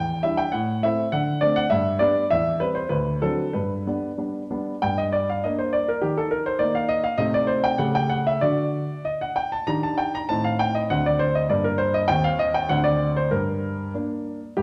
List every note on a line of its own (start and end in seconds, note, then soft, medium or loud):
0.00 0.22 E2 soft
0.00 0.22 G5 medium
0.23 0.45 G3 soft
0.23 0.46 D4 soft
0.23 0.46 E4 soft
0.23 0.39 E5 medium
0.37 0.53 G5 medium
0.52 0.83 A2 soft
0.52 0.83 F#5 medium
0.83 1.05 A3 soft
0.83 1.06 C4 soft
0.83 1.06 E4 soft
0.83 1.13 E5 medium
1.12 1.42 D3 medium
1.12 1.39 F#5 medium
1.41 1.63 A3 soft
1.41 1.64 C4 soft
1.41 1.64 D4 soft
1.41 1.57 D5 medium
1.56 1.72 F#5 medium
1.70 2.00 G2 medium
1.70 2.01 E5 medium
1.99 2.22 G3 soft
1.99 2.22 B3 soft
1.99 2.23 D4 soft
1.99 2.27 D5 medium
2.31 2.60 E2 medium
2.31 2.61 E5 medium
2.60 2.83 G3 soft
2.60 2.83 C4 soft
2.60 2.76 B4 medium
2.75 2.91 C5 medium
2.89 3.21 D2 soft
2.89 3.22 B4 medium
3.22 3.46 F#3 soft
3.22 3.46 C4 soft
3.22 3.46 D4 soft
3.22 3.55 A4 medium
3.53 3.86 G2 soft
3.53 4.18 B4 medium
3.87 4.10 G3 soft
3.87 4.10 B3 soft
3.87 4.10 D4 soft
4.18 4.41 G3 soft
4.18 4.42 B3 soft
4.18 4.42 D4 soft
4.51 4.74 G3 soft
4.51 4.74 B3 soft
4.51 4.74 D4 soft
4.82 5.42 G2 soft
4.82 4.98 G5 medium
4.98 5.14 D#5 medium
5.12 5.29 D5 medium
5.29 5.44 F5 medium
5.44 5.87 A#3 soft
5.44 5.88 D4 soft
5.44 5.59 D#5 medium
5.59 5.74 C5 medium
5.73 5.88 D5 medium
5.88 6.03 A#4 medium
6.02 6.59 D#3 soft
6.02 6.17 G4 medium
6.17 6.32 A4 medium
6.31 6.46 A#4 medium
6.46 6.61 C5 medium
6.59 7.02 A#3 soft
6.59 7.03 D#4 soft
6.59 6.75 D5 medium
6.75 6.90 F5 medium
6.89 7.04 D#5 medium
7.04 7.19 F5 medium
7.18 7.77 C3 medium
7.18 7.76 A3 soft
7.18 7.76 D#4 soft
7.18 7.33 D#5 medium
7.34 7.49 D5 medium
7.47 7.63 C5 medium
7.64 7.79 G5 medium
7.78 8.40 C#3 medium
7.78 8.38 A3 soft
7.78 8.38 G4 soft
7.78 7.94 F#5 medium
7.95 8.10 G5 medium
8.10 8.26 F#5 medium
8.27 8.42 E5 medium
8.41 8.87 D3 soft
8.41 8.93 D4 soft
8.41 8.93 F#4 soft
8.41 9.05 D5 medium
9.05 9.21 D#5 medium
9.21 9.37 F#5 medium
9.36 9.52 G5 medium
9.52 9.68 A5 medium
9.67 10.27 D#3 soft
9.67 10.26 D4 soft
9.67 10.26 G4 soft
9.67 9.83 A#5 medium
9.83 9.98 A5 medium
9.98 10.13 G5 medium
10.15 10.29 A#5 medium
10.29 10.88 A2 soft
10.29 10.87 C4 soft
10.29 10.87 D#4 soft
10.29 10.44 A5 medium
10.44 10.59 F5 medium
10.59 10.75 G5 medium
10.75 10.90 D#5 medium
10.90 11.48 D2 soft
10.90 11.47 C4 soft
10.90 11.47 D4 soft
10.90 11.05 F#5 medium
11.06 11.20 D5 medium
11.19 11.34 C5 medium
11.35 11.50 D#5 medium
11.49 12.08 G2 soft
11.49 12.06 A#3 soft
11.49 12.06 D4 soft
11.49 11.64 D5 medium
11.64 11.79 A#4 medium
11.78 11.93 C5 medium
11.94 12.09 D#5 medium
12.08 12.68 D#2 medium
12.08 12.66 C4 soft
12.08 12.23 G5 medium
12.24 12.39 F5 medium
12.39 12.54 D#5 medium
12.54 12.69 G5 medium
12.69 13.30 D2 medium
12.69 13.28 C4 soft
12.69 13.28 D4 soft
12.69 12.84 F#5 medium
12.84 13.12 D5 medium
13.17 13.32 C5 medium
13.31 13.93 G2 soft
13.31 13.90 A#4 medium
13.94 14.40 A#3 soft
13.94 14.40 D4 soft
14.57 14.62 G2 soft
14.57 14.62 G4 medium